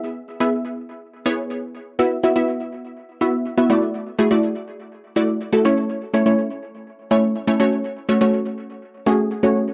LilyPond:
\new Staff \with { instrumentName = "Synth pluck" } { \time 4/4 \key e \mixolydian \tempo 4 = 123 <b e' gis' e''>8 r16 <b e' gis' e''>4~ <b e' gis' e''>16 r8 <b e' gis' cis''>4 r8 | <b e' fis' e''>16 r16 <b e' fis' e''>16 <b e' fis' e''>4~ <b e' fis' e''>16 r8 <b e' fis' e''>8 r16 <b e' fis' e''>16 <a e' fis' d''>8~ | <a e' fis' d''>16 r16 <a e' fis' gis'>16 <a e' fis' d''>4~ <a e' fis' d''>16 r8 <a e' fis' d''>8 r16 <a e' fis' a'>16 <a cis' e' cis''>8~ | <a cis' e' cis''>16 r16 <a cis' e' cis''>16 <a cis' e' cis''>4~ <a cis' e' cis''>16 r8 <a cis' e' cis''>8 r16 <a cis' e' cis''>16 <a cis' fis' cis''>8~ |
<a cis' fis' cis''>16 r16 <a cis' fis' cis''>16 <a cis' fis' cis''>4~ <a cis' fis' cis''>16 r8 <a cis' fis' gis'>8 r16 <a cis' fis' cis''>8 r16 | }